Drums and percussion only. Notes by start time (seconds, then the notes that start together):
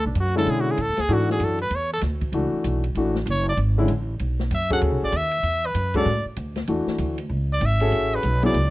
0.15 hi-hat pedal, ride
0.26 snare
0.37 snare
0.47 ride
0.77 hi-hat pedal, ride
0.97 snare, ride
1.09 ride
1.19 snare
1.30 snare
1.40 hi-hat pedal, ride
1.59 ride
1.71 ride
2.01 snare, hi-hat pedal, ride
2.21 kick, ride
2.33 ride
2.64 hi-hat pedal, ride
2.84 ride
2.95 ride
3.15 snare
3.27 hi-hat pedal, ride
3.57 ride
3.88 hi-hat pedal, ride
4.19 ride
4.39 snare
4.51 hi-hat pedal, ride
4.70 kick, ride
4.82 ride
5.12 hi-hat pedal, ride
5.31 ride
5.43 ride
5.75 hi-hat pedal, ride
5.94 kick, ride
6.05 ride
6.36 hi-hat pedal, ride
6.56 snare, ride
6.67 ride
6.88 snare
6.98 hi-hat pedal, ride
7.18 ride
7.61 hi-hat pedal, ride
7.80 ride
7.92 ride
8.23 hi-hat pedal, ride
8.43 ride
8.54 ride